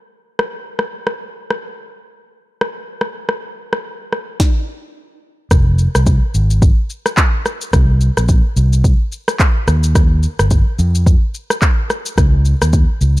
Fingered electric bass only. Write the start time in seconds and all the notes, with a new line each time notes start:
5.51 F1
5.95 C2
6.34 G#1
7.73 C2
8.17 A#1
8.56 C2
9.68 D#2
10.39 G1
10.79 F2
12.18 C#2
12.61 D#2
13.01 C#2